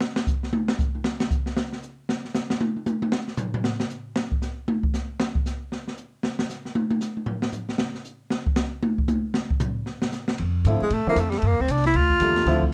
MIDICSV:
0, 0, Header, 1, 6, 480
1, 0, Start_track
1, 0, Key_signature, -1, "minor"
1, 0, Tempo, 259403
1, 20, Time_signature, 4, 2, 24, 8
1, 23567, End_track
2, 0, Start_track
2, 0, Title_t, "Tenor saxophone"
2, 0, Program_c, 0, 66
2, 20022, Note_on_c, 0, 56, 84
2, 20231, Note_on_c, 0, 57, 73
2, 20259, Note_off_c, 0, 56, 0
2, 20495, Note_off_c, 0, 57, 0
2, 20519, Note_on_c, 0, 58, 94
2, 20719, Note_on_c, 0, 57, 67
2, 20746, Note_off_c, 0, 58, 0
2, 20912, Note_on_c, 0, 55, 72
2, 20940, Note_off_c, 0, 57, 0
2, 21060, Note_on_c, 0, 57, 71
2, 21088, Note_off_c, 0, 55, 0
2, 21215, Note_on_c, 0, 58, 77
2, 21243, Note_off_c, 0, 57, 0
2, 21486, Note_on_c, 0, 60, 73
2, 21514, Note_off_c, 0, 58, 0
2, 21670, Note_on_c, 0, 62, 81
2, 21698, Note_off_c, 0, 60, 0
2, 21935, Note_off_c, 0, 62, 0
2, 21951, Note_on_c, 0, 64, 87
2, 22140, Note_on_c, 0, 65, 93
2, 22167, Note_off_c, 0, 64, 0
2, 23561, Note_off_c, 0, 65, 0
2, 23567, End_track
3, 0, Start_track
3, 0, Title_t, "Grand piano"
3, 0, Program_c, 1, 0
3, 19732, Note_on_c, 1, 50, 55
3, 19733, Note_on_c, 1, 57, 54
3, 19735, Note_on_c, 1, 53, 54
3, 19735, Note_on_c, 1, 60, 56
3, 19745, Note_on_c, 1, 64, 66
3, 19975, Note_off_c, 1, 50, 0
3, 19976, Note_off_c, 1, 57, 0
3, 19977, Note_off_c, 1, 53, 0
3, 19977, Note_off_c, 1, 60, 0
3, 19982, Note_off_c, 1, 64, 0
3, 20484, Note_on_c, 1, 50, 68
3, 20488, Note_on_c, 1, 53, 62
3, 20492, Note_on_c, 1, 60, 66
3, 20497, Note_on_c, 1, 64, 77
3, 20502, Note_on_c, 1, 57, 60
3, 20645, Note_off_c, 1, 50, 0
3, 20647, Note_off_c, 1, 53, 0
3, 20649, Note_off_c, 1, 60, 0
3, 20651, Note_off_c, 1, 64, 0
3, 20654, Note_off_c, 1, 57, 0
3, 22586, Note_on_c, 1, 50, 54
3, 22600, Note_on_c, 1, 55, 52
3, 22602, Note_on_c, 1, 65, 61
3, 22603, Note_on_c, 1, 57, 54
3, 22605, Note_on_c, 1, 58, 49
3, 23048, Note_off_c, 1, 50, 0
3, 23051, Note_off_c, 1, 57, 0
3, 23070, Note_off_c, 1, 55, 0
3, 23070, Note_on_c, 1, 53, 70
3, 23071, Note_off_c, 1, 65, 0
3, 23072, Note_off_c, 1, 58, 0
3, 23076, Note_on_c, 1, 50, 78
3, 23079, Note_on_c, 1, 57, 73
3, 23086, Note_on_c, 1, 60, 66
3, 23091, Note_on_c, 1, 64, 83
3, 23328, Note_off_c, 1, 53, 0
3, 23330, Note_off_c, 1, 50, 0
3, 23332, Note_off_c, 1, 57, 0
3, 23335, Note_off_c, 1, 60, 0
3, 23338, Note_off_c, 1, 64, 0
3, 23567, End_track
4, 0, Start_track
4, 0, Title_t, "Upright bass"
4, 0, Program_c, 2, 32
4, 19237, Note_on_c, 2, 41, 81
4, 19687, Note_off_c, 2, 41, 0
4, 19698, Note_on_c, 2, 44, 81
4, 19967, Note_off_c, 2, 44, 0
4, 20170, Note_on_c, 2, 45, 81
4, 20443, Note_off_c, 2, 45, 0
4, 20645, Note_on_c, 2, 41, 96
4, 21116, Note_off_c, 2, 41, 0
4, 21138, Note_on_c, 2, 43, 76
4, 21291, Note_off_c, 2, 43, 0
4, 21291, Note_on_c, 2, 41, 55
4, 21447, Note_off_c, 2, 41, 0
4, 21458, Note_on_c, 2, 38, 73
4, 21606, Note_off_c, 2, 38, 0
4, 21617, Note_on_c, 2, 36, 77
4, 22083, Note_off_c, 2, 36, 0
4, 22099, Note_on_c, 2, 38, 86
4, 22560, Note_off_c, 2, 38, 0
4, 22571, Note_on_c, 2, 40, 91
4, 23034, Note_off_c, 2, 40, 0
4, 23045, Note_on_c, 2, 38, 77
4, 23518, Note_off_c, 2, 38, 0
4, 23567, End_track
5, 0, Start_track
5, 0, Title_t, "Muted upright bass strokes"
5, 20007, Note_on_c, 9, 29, 36
5, 20192, Note_off_c, 9, 29, 0
5, 20467, Note_on_c, 9, 29, 38
5, 20652, Note_off_c, 9, 29, 0
5, 23567, End_track
6, 0, Start_track
6, 0, Title_t, "Drums"
6, 10, Note_on_c, 9, 38, 83
6, 195, Note_off_c, 9, 38, 0
6, 299, Note_on_c, 9, 38, 91
6, 484, Note_off_c, 9, 38, 0
6, 497, Note_on_c, 9, 44, 61
6, 498, Note_on_c, 9, 36, 78
6, 682, Note_off_c, 9, 44, 0
6, 684, Note_off_c, 9, 36, 0
6, 801, Note_on_c, 9, 38, 48
6, 976, Note_on_c, 9, 48, 99
6, 986, Note_off_c, 9, 38, 0
6, 1161, Note_off_c, 9, 48, 0
6, 1266, Note_on_c, 9, 38, 91
6, 1451, Note_off_c, 9, 38, 0
6, 1461, Note_on_c, 9, 36, 85
6, 1461, Note_on_c, 9, 44, 61
6, 1646, Note_off_c, 9, 36, 0
6, 1646, Note_off_c, 9, 44, 0
6, 1755, Note_on_c, 9, 48, 35
6, 1931, Note_on_c, 9, 38, 90
6, 1940, Note_off_c, 9, 48, 0
6, 2116, Note_off_c, 9, 38, 0
6, 2226, Note_on_c, 9, 38, 94
6, 2411, Note_off_c, 9, 38, 0
6, 2418, Note_on_c, 9, 44, 61
6, 2420, Note_on_c, 9, 36, 80
6, 2603, Note_off_c, 9, 44, 0
6, 2605, Note_off_c, 9, 36, 0
6, 2702, Note_on_c, 9, 38, 51
6, 2887, Note_off_c, 9, 38, 0
6, 2897, Note_on_c, 9, 38, 92
6, 3082, Note_off_c, 9, 38, 0
6, 3192, Note_on_c, 9, 38, 46
6, 3375, Note_on_c, 9, 44, 57
6, 3377, Note_off_c, 9, 38, 0
6, 3560, Note_off_c, 9, 44, 0
6, 3867, Note_on_c, 9, 38, 91
6, 4052, Note_off_c, 9, 38, 0
6, 4157, Note_on_c, 9, 38, 34
6, 4334, Note_on_c, 9, 44, 63
6, 4340, Note_off_c, 9, 38, 0
6, 4340, Note_on_c, 9, 38, 101
6, 4519, Note_off_c, 9, 44, 0
6, 4525, Note_off_c, 9, 38, 0
6, 4629, Note_on_c, 9, 38, 96
6, 4814, Note_off_c, 9, 38, 0
6, 4821, Note_on_c, 9, 48, 94
6, 5006, Note_off_c, 9, 48, 0
6, 5115, Note_on_c, 9, 48, 39
6, 5292, Note_on_c, 9, 44, 58
6, 5298, Note_off_c, 9, 48, 0
6, 5298, Note_on_c, 9, 48, 92
6, 5477, Note_off_c, 9, 44, 0
6, 5483, Note_off_c, 9, 48, 0
6, 5592, Note_on_c, 9, 48, 91
6, 5772, Note_on_c, 9, 38, 94
6, 5777, Note_off_c, 9, 48, 0
6, 5957, Note_off_c, 9, 38, 0
6, 6062, Note_on_c, 9, 38, 41
6, 6238, Note_on_c, 9, 44, 62
6, 6243, Note_on_c, 9, 43, 103
6, 6247, Note_off_c, 9, 38, 0
6, 6423, Note_off_c, 9, 44, 0
6, 6428, Note_off_c, 9, 43, 0
6, 6551, Note_on_c, 9, 43, 102
6, 6736, Note_off_c, 9, 43, 0
6, 6736, Note_on_c, 9, 38, 99
6, 6921, Note_off_c, 9, 38, 0
6, 7027, Note_on_c, 9, 38, 97
6, 7211, Note_on_c, 9, 44, 58
6, 7212, Note_off_c, 9, 38, 0
6, 7396, Note_off_c, 9, 44, 0
6, 7691, Note_on_c, 9, 38, 89
6, 7876, Note_off_c, 9, 38, 0
6, 7987, Note_on_c, 9, 36, 68
6, 8171, Note_on_c, 9, 44, 61
6, 8172, Note_off_c, 9, 36, 0
6, 8176, Note_on_c, 9, 38, 43
6, 8356, Note_off_c, 9, 44, 0
6, 8361, Note_off_c, 9, 38, 0
6, 8659, Note_on_c, 9, 48, 94
6, 8844, Note_off_c, 9, 48, 0
6, 8944, Note_on_c, 9, 36, 76
6, 9129, Note_off_c, 9, 36, 0
6, 9131, Note_on_c, 9, 44, 57
6, 9136, Note_on_c, 9, 38, 50
6, 9316, Note_off_c, 9, 44, 0
6, 9321, Note_off_c, 9, 38, 0
6, 9615, Note_on_c, 9, 38, 99
6, 9800, Note_off_c, 9, 38, 0
6, 9904, Note_on_c, 9, 36, 76
6, 10089, Note_off_c, 9, 36, 0
6, 10097, Note_on_c, 9, 44, 61
6, 10102, Note_on_c, 9, 38, 40
6, 10282, Note_off_c, 9, 44, 0
6, 10287, Note_off_c, 9, 38, 0
6, 10584, Note_on_c, 9, 38, 58
6, 10769, Note_off_c, 9, 38, 0
6, 10873, Note_on_c, 9, 38, 50
6, 11052, Note_on_c, 9, 44, 59
6, 11058, Note_off_c, 9, 38, 0
6, 11237, Note_off_c, 9, 44, 0
6, 11533, Note_on_c, 9, 38, 92
6, 11718, Note_off_c, 9, 38, 0
6, 11823, Note_on_c, 9, 38, 92
6, 12008, Note_off_c, 9, 38, 0
6, 12017, Note_on_c, 9, 44, 58
6, 12022, Note_on_c, 9, 38, 42
6, 12202, Note_off_c, 9, 44, 0
6, 12207, Note_off_c, 9, 38, 0
6, 12312, Note_on_c, 9, 38, 39
6, 12495, Note_on_c, 9, 48, 95
6, 12497, Note_off_c, 9, 38, 0
6, 12680, Note_off_c, 9, 48, 0
6, 12777, Note_on_c, 9, 48, 92
6, 12962, Note_off_c, 9, 48, 0
6, 12966, Note_on_c, 9, 44, 61
6, 12972, Note_on_c, 9, 38, 45
6, 13151, Note_off_c, 9, 44, 0
6, 13157, Note_off_c, 9, 38, 0
6, 13263, Note_on_c, 9, 48, 42
6, 13438, Note_on_c, 9, 43, 86
6, 13448, Note_off_c, 9, 48, 0
6, 13623, Note_off_c, 9, 43, 0
6, 13733, Note_on_c, 9, 38, 88
6, 13918, Note_off_c, 9, 38, 0
6, 13918, Note_on_c, 9, 44, 61
6, 13924, Note_on_c, 9, 43, 47
6, 14103, Note_off_c, 9, 44, 0
6, 14109, Note_off_c, 9, 43, 0
6, 14225, Note_on_c, 9, 38, 58
6, 14401, Note_off_c, 9, 38, 0
6, 14401, Note_on_c, 9, 38, 102
6, 14586, Note_off_c, 9, 38, 0
6, 14704, Note_on_c, 9, 38, 38
6, 14886, Note_on_c, 9, 44, 61
6, 14889, Note_off_c, 9, 38, 0
6, 15072, Note_off_c, 9, 44, 0
6, 15366, Note_on_c, 9, 38, 91
6, 15551, Note_off_c, 9, 38, 0
6, 15663, Note_on_c, 9, 36, 79
6, 15837, Note_on_c, 9, 44, 61
6, 15843, Note_on_c, 9, 38, 105
6, 15849, Note_off_c, 9, 36, 0
6, 16022, Note_off_c, 9, 44, 0
6, 16028, Note_off_c, 9, 38, 0
6, 16332, Note_on_c, 9, 48, 103
6, 16517, Note_off_c, 9, 48, 0
6, 16624, Note_on_c, 9, 36, 74
6, 16800, Note_on_c, 9, 44, 61
6, 16806, Note_on_c, 9, 48, 106
6, 16809, Note_off_c, 9, 36, 0
6, 16985, Note_off_c, 9, 44, 0
6, 16991, Note_off_c, 9, 48, 0
6, 17283, Note_on_c, 9, 38, 97
6, 17468, Note_off_c, 9, 38, 0
6, 17588, Note_on_c, 9, 36, 75
6, 17760, Note_on_c, 9, 44, 65
6, 17766, Note_on_c, 9, 43, 115
6, 17773, Note_off_c, 9, 36, 0
6, 17945, Note_off_c, 9, 44, 0
6, 17951, Note_off_c, 9, 43, 0
6, 18246, Note_on_c, 9, 38, 45
6, 18431, Note_off_c, 9, 38, 0
6, 18535, Note_on_c, 9, 38, 96
6, 18720, Note_off_c, 9, 38, 0
6, 18723, Note_on_c, 9, 44, 62
6, 18729, Note_on_c, 9, 38, 50
6, 18908, Note_off_c, 9, 44, 0
6, 18914, Note_off_c, 9, 38, 0
6, 19018, Note_on_c, 9, 38, 93
6, 19203, Note_off_c, 9, 38, 0
6, 19208, Note_on_c, 9, 51, 61
6, 19394, Note_off_c, 9, 51, 0
6, 19701, Note_on_c, 9, 44, 58
6, 19701, Note_on_c, 9, 51, 72
6, 19886, Note_off_c, 9, 44, 0
6, 19886, Note_off_c, 9, 51, 0
6, 20175, Note_on_c, 9, 51, 64
6, 20360, Note_off_c, 9, 51, 0
6, 20653, Note_on_c, 9, 44, 68
6, 20653, Note_on_c, 9, 51, 68
6, 20838, Note_off_c, 9, 44, 0
6, 20838, Note_off_c, 9, 51, 0
6, 20945, Note_on_c, 9, 51, 47
6, 20950, Note_on_c, 9, 38, 57
6, 21128, Note_off_c, 9, 51, 0
6, 21128, Note_on_c, 9, 51, 57
6, 21135, Note_off_c, 9, 38, 0
6, 21313, Note_off_c, 9, 51, 0
6, 21616, Note_on_c, 9, 44, 65
6, 21616, Note_on_c, 9, 51, 74
6, 21771, Note_on_c, 9, 38, 28
6, 21801, Note_off_c, 9, 44, 0
6, 21801, Note_off_c, 9, 51, 0
6, 21902, Note_on_c, 9, 51, 50
6, 21934, Note_off_c, 9, 38, 0
6, 21934, Note_on_c, 9, 38, 47
6, 22085, Note_off_c, 9, 51, 0
6, 22085, Note_on_c, 9, 51, 62
6, 22119, Note_off_c, 9, 38, 0
6, 22270, Note_off_c, 9, 51, 0
6, 22387, Note_on_c, 9, 36, 45
6, 22570, Note_on_c, 9, 44, 66
6, 22570, Note_on_c, 9, 51, 73
6, 22573, Note_off_c, 9, 36, 0
6, 22755, Note_off_c, 9, 44, 0
6, 22755, Note_off_c, 9, 51, 0
6, 22870, Note_on_c, 9, 51, 45
6, 22876, Note_on_c, 9, 38, 61
6, 23055, Note_off_c, 9, 51, 0
6, 23061, Note_off_c, 9, 38, 0
6, 23062, Note_on_c, 9, 51, 55
6, 23068, Note_on_c, 9, 38, 37
6, 23248, Note_off_c, 9, 51, 0
6, 23253, Note_off_c, 9, 38, 0
6, 23349, Note_on_c, 9, 36, 55
6, 23534, Note_off_c, 9, 36, 0
6, 23567, End_track
0, 0, End_of_file